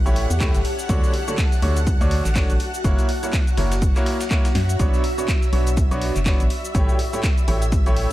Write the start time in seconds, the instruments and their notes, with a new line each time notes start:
Already playing: ambient pad G4 C#5 E5 A5, string machine F#5 F#6
0.06 fm bass A1, grand piano A2 A3 E4 G4 C#5, closed hi-hat, shaker
0.16 closed hi-hat, open hi-hat
0.30 fm bass E2, closed hi-hat, shaker
0.40 grand piano A2 A3 E4 G4 C#5, kick, snare, clap, closed hi-hat, shaker
0.54 fm bass G1, snare, closed hi-hat, shaker
0.65 closed hi-hat, open hi-hat
0.79 shaker
0.89 fm bass D2, grand piano D3 A3 D4 F#4 C#5, ambient pad F#4, kick, closed hi-hat, shaker
1.04 snare, shaker
1.14 ambient pad D5, closed hi-hat, open hi-hat
1.28 grand piano D3 A3 D4 F#4 C#5, closed hi-hat, shaker
1.38 kick, snare, clap, closed hi-hat, shaker
1.52 snare, closed hi-hat, shaker
1.62 fm bass D2, grand piano D3 A3 D4 F#4 C#5, closed hi-hat, open hi-hat
1.77 closed hi-hat, shaker
1.87 kick, closed hi-hat, shaker
2.01 fm bass D2, grand piano D3 A3 D4 F#4 C#5, closed hi-hat, shaker
2.11 snare, closed hi-hat, open hi-hat
2.25 fm bass A1, clap, closed hi-hat, shaker
2.35 grand piano A3 D4 F#4 C#5, kick, snare, clap, closed hi-hat, open hi-hat, shaker
2.50 fm bass A1, closed hi-hat, shaker
2.60 closed hi-hat, open hi-hat
2.69 ambient pad C#5
2.74 shaker
2.81 fm bass F#1, grand piano A#3 E4 F#4 C#5, ambient pad A#5, kick, closed hi-hat, shaker
2.99 closed hi-hat, shaker
3.06 ambient pad E5, closed hi-hat, open hi-hat
3.23 grand piano A#3 E4 F#4 C#5, closed hi-hat, shaker
3.33 kick, snare, clap, closed hi-hat, shaker
3.47 closed hi-hat, shaker
3.57 fm bass F#1, grand piano A#3 E4 F#4 C#5, snare, closed hi-hat, open hi-hat
3.72 snare, closed hi-hat, shaker
3.82 kick, closed hi-hat, shaker
3.96 grand piano A#3 E4 F#4 C#5, clap, closed hi-hat, shaker
4.06 snare, closed hi-hat, open hi-hat
4.21 snare, closed hi-hat, shaker
4.31 grand piano A#3 E4 F#4 C#5, kick, snare, clap, closed hi-hat, shaker
4.45 snare, closed hi-hat, shaker
4.55 fm bass F#2, snare, closed hi-hat, open hi-hat
4.69 closed hi-hat, shaker
4.79 fm bass B1, grand piano B2 B3 D4 F#4 C#5, string machine E5 E6, kick, closed hi-hat, shaker
4.94 snare, shaker
5.04 closed hi-hat, open hi-hat
5.11 ambient pad D5
5.18 grand piano B2 B3 D4 F#4 C#5, closed hi-hat, shaker
5.28 kick, snare, clap, closed hi-hat, shaker
5.41 ambient pad B5, snare, closed hi-hat, shaker
5.52 fm bass B1, grand piano B2 B3 D4 F#4 C#5, closed hi-hat, open hi-hat
5.67 closed hi-hat, shaker
5.77 kick, closed hi-hat, shaker
5.91 fm bass B1, grand piano B2 B3 D4 F#4 C#5, closed hi-hat, shaker
6.02 snare, closed hi-hat, open hi-hat
6.16 fm bass F#1, clap, closed hi-hat, shaker
6.26 grand piano B3 D4 F#4 C#5, kick, snare, clap, closed hi-hat, open hi-hat, shaker
6.40 fm bass A1, closed hi-hat, shaker
6.50 ambient pad G4, closed hi-hat, open hi-hat
6.56 ambient pad C#5
6.65 shaker
6.74 fm bass A1, grand piano A2 A3 E4 G4 C#5, ambient pad E5, kick, closed hi-hat, shaker
6.89 closed hi-hat, shaker
6.99 closed hi-hat, open hi-hat
7.13 grand piano A2 A3 E4 G4 C#5, ambient pad A5, closed hi-hat, shaker
7.23 kick, snare, clap, closed hi-hat, shaker
7.38 closed hi-hat, shaker
7.48 fm bass A1, grand piano A2 A3 E4 G4 C#5, closed hi-hat, open hi-hat
7.62 closed hi-hat, shaker
7.72 kick, closed hi-hat, shaker
7.86 fm bass A1, grand piano A2 A3 E4 G4 C#5, closed hi-hat, shaker
7.96 closed hi-hat, open hi-hat